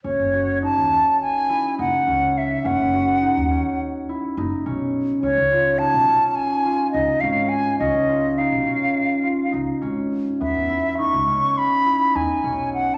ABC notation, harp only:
X:1
M:9/8
L:1/8
Q:3/8=69
K:F#dor
V:1 name="Harp"
C F D C2 E D C2 | C F D C2 E D C2 | C ^E D C2 E D C2 | C ^E D C2 E D C2 |
B, E D C2 E D C2 |]